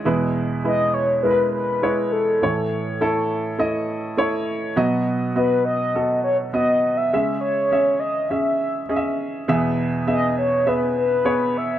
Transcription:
X:1
M:4/4
L:1/16
Q:1/4=102
K:E
V:1 name="Soft synth lead"
z4 d2 c2 B2 B4 A2- | A4 z12 | z4 B2 d4 c2 d3 e- | e2 c4 d2 e6 z2 |
z4 d2 c2 B2 B4 e2 |]
V:2 name="Upright piano"
[G,EB]4 [G,EB]4 [G,E^AB]4 [G,Ec]4 | [A,Ec]4 [A,EA]4 [A,Ed]4 [A,Ec]4 | [B,Fd]4 [B,Fd]4 [B,FA]4 [B,Fd]4 | [CGe]4 [CGe]4 [CGe]4 [CGde]4 |
[B,Ge]4 [B,Ge]4 [B,Ge]4 [B,Gc]4 |]
V:3 name="Upright piano" clef=bass
[E,,B,,]16 | [A,,E,]16 | [B,,F,]16 | [C,G,]16 |
[E,,B,,]16 |]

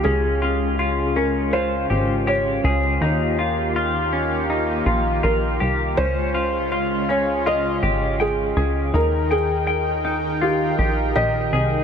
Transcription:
X:1
M:4/4
L:1/16
Q:1/4=81
K:Dblyd
V:1 name="Felt piano"
A4 z2 B2 c4 d3 z | z12 B4 | c4 z2 d2 e4 A4 | B2 A6 G4 e4 |]
V:2 name="Clean electric guitar"
D2 F2 F2 D2 F2 G2 G2 A2 | E2 F2 F2 D2 E2 F2 F2 G2 | D2 F2 F2 D2 F2 G2 g2 A2 | E2 g2 g2 E2 F2 G2 G2 A2 |]
V:3 name="Analog synth pad"
[D,A,DF]16 | [E,B,G]16 | [D,A,DF]16 | [E,EBg]16 |]
V:4 name="Analog synth bass" clef=bass
D,,8- D,,2 A,,,4 D,,2 | E,,8- E,,2 B,,,2 B,,,2 C,,2 | D,,8- D,,2 A,,,4 D,,2 | E,,8- E,,2 B,,,2 B,,,2 C,,2 |]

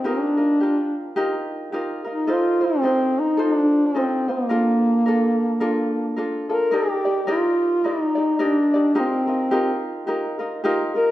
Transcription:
X:1
M:4/4
L:1/16
Q:"Swing" 1/4=108
K:Bb
V:1 name="Ukulele"
[EFGB]2 [EFB]2 [FGB]4 [EFGB]4 [EFGB]2 [EFB]2 | [EFAc]2 [EFc]2 [EFAc]4 [FAc]4 [EFAc]2 [EFc]2 | [DFAB]4 [DFAB]4 [DFAB]4 [DFAB]2 [DFA]2 | [K:Eb] [EGBd]2 [EGd]2 [EGBd]4 [EGBd]2 [EGd]2 [EGBd]2 [EGd]2 |
[EFGB]2 [EFB]2 [EFGB]4 [EFGB]2 [EFB]2 [EFGB]2 [EFB]2 |]
V:2 name="Duduk"
D8 z6 E2 | F2 C4 E2 D3 C3 B,2- | B,12 z2 B2 | [K:Eb] G4 F4 E4 D4 |
C6 z8 B2 |]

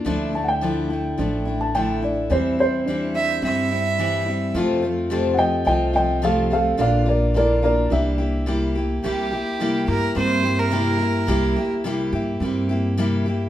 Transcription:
X:1
M:4/4
L:1/16
Q:1/4=107
K:Cmix
V:1 name="Upright piano"
z2 a [_g=g]8 a g2 d2 | c2 c8 z6 | z6 [_e_g=g]2 [eg]2 [eg]2 [Af]2 [Af]2 | [df]2 [Bd]2 [Bd]2 [Bd]2 e4 z4 |
z16 | z16 |]
V:2 name="Fiddle"
z16 | z6 e2 e8 | z16 | z16 |
G6 B2 c3 B4- B- | B3 z12 z |]
V:3 name="Felt piano"
D4 E4 D4 E4 | C4 D4 C4 E4 | F4 G4 F4 G4 | D4 E4 D4 E4 |
G4 E4 C4 E4 | G4 E4 C4 E4 |]
V:4 name="Steel-string acoustic guitar"
[D,F,A,DE]2 [A,DE]2 [D,F,A,DE]2 [A,DE]2 [F,A,DE]2 [A,DE]2 [D,F,A,DE]2 [A,DE]2 | [E,G,CE]2 [G,CE]2 [E,G,CE]2 [G,CE]2 [E,G,CE]2 [G,CE]2 [E,G,CE]2 [G,CE]2 | [F,,C,F,A,CF]2 [F,A,CF]2 [F,,C,F,A,CF]2 [F,A,CF]2 [F,A,CF]2 [F,A,CF]2 [F,,C,F,A,CF]2 [F,A,CF]2 | [B,,D,B,DF]2 [B,DF]2 [B,,D,B,DF]2 [B,DF]2 [G,B,EG]2 [B,EG]2 [C,G,B,EG]2 [B,EG]2 |
[C,G,B,EG]2 [B,EG]2 [C,G,B,EG]2 [B,EG]2 [G,B,EG]2 [B,EG]2 [C,G,B,EG]2 [B,EG]2 | [C,G,B,EG]2 [B,EG]2 [C,G,B,EG]2 [B,EG]2 [G,B,EG]2 [B,EG]2 [C,G,B,EG]2 [B,EG]2 |]
V:5 name="Upright bass" clef=bass
D,,8 A,,,8 | E,,8 G,,8 | F,,8 C,,8 | B,,,8 C,,8 |
C,,2 z4 G,,2 G,,8 | C,,2 z4 G,,2 G,,8 |]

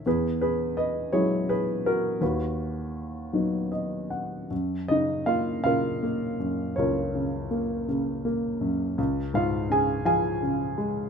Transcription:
X:1
M:6/8
L:1/8
Q:3/8=54
K:B
V:1 name="Grand piano"
[GB] [GB] [Bd] [Gc] [GB] [FA] | [FB]4 d f | [K:F#] z [Dd] [Ee] [EAe]3 | [CEAc]3 z3 |
z [Ee] [Gg] [Geg]3 |]
V:2 name="Grand piano" clef=bass
E,,3 [F,G,E]3 | D,,3 [F,B,D]3 | [K:F#] F,, C, A, C, A, F,, | C,, C, A, C, A, F,, |
C,, G,, C, E, C, G, |]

